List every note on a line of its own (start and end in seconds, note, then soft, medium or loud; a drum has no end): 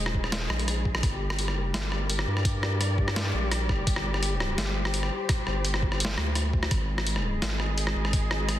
0.00 0.49 D#1 loud
0.00 1.03 G#3 medium
0.00 1.03 G#4 medium
0.00 1.03 C5 medium
0.00 1.03 D#5 medium
0.06 cross-stick medium
0.14 kick medium
0.24 cross-stick medium
0.32 snare loud
0.32 closed hi-hat medium
0.50 1.02 A#1 loud
0.50 cross-stick medium
0.59 closed hi-hat soft
0.68 cross-stick medium
0.68 closed hi-hat medium
0.85 kick medium
0.95 cross-stick medium
1.03 1.52 G1 medium
1.03 6.71 G3 medium
1.03 kick loud
1.03 cross-stick medium
1.03 closed hi-hat medium
1.10 6.71 G4 medium
1.16 4.55 A#4 medium
1.30 cross-stick medium
1.39 closed hi-hat medium
1.48 cross-stick medium
1.52 1.73 F#1 medium
1.74 2.26 G1 loud
1.74 cross-stick medium
1.74 snare loud
1.74 closed hi-hat medium
1.85 4.47 D5 medium
1.92 cross-stick medium
2.10 closed hi-hat medium
2.19 cross-stick medium
2.27 3.33 G2 loud
2.37 cross-stick medium
2.45 kick loud
2.45 closed hi-hat medium
2.63 cross-stick medium
2.81 cross-stick medium
2.81 closed hi-hat medium
2.98 kick medium
3.08 cross-stick medium
3.16 snare loud
3.16 closed hi-hat medium
3.25 cross-stick medium
3.34 3.86 A#1 loud
3.52 cross-stick medium
3.52 closed hi-hat medium
3.69 kick medium
3.69 cross-stick medium
3.87 4.57 G1 loud
3.87 kick loud
3.87 closed hi-hat medium
3.96 cross-stick medium
4.14 cross-stick medium
4.23 closed hi-hat medium
4.37 4.43 C5 medium
4.37 cross-stick medium
4.44 6.71 C5 medium
4.58 5.10 G1 loud
4.58 cross-stick medium
4.58 snare loud
4.58 closed hi-hat medium
4.85 cross-stick medium
4.94 closed hi-hat medium
5.03 cross-stick medium
5.29 kick loud
5.29 cross-stick medium
5.29 closed hi-hat medium
5.47 6.17 G1 medium
5.47 cross-stick medium
5.65 closed hi-hat medium
5.74 cross-stick medium
5.83 kick medium
5.92 cross-stick medium
6.00 closed hi-hat medium
6.05 snare loud
6.18 6.70 D2 loud
6.18 cross-stick medium
6.35 cross-stick medium
6.35 closed hi-hat medium
6.53 kick medium
6.63 cross-stick medium
6.71 7.41 G#1 loud
6.71 8.59 G#3 medium
6.71 kick loud
6.71 cross-stick medium
6.71 closed hi-hat medium
6.89 8.59 G#4 medium
6.98 cross-stick medium
7.05 8.59 D#5 medium
7.05 closed hi-hat medium
7.16 cross-stick medium
7.42 7.94 G#1 loud
7.42 cross-stick medium
7.42 snare loud
7.42 closed hi-hat medium
7.60 cross-stick medium
7.78 closed hi-hat medium
7.87 cross-stick medium
7.96 8.59 G#1 loud
8.05 cross-stick medium
8.13 kick loud
8.13 closed hi-hat medium
8.31 cross-stick medium
8.49 cross-stick medium
8.49 closed hi-hat medium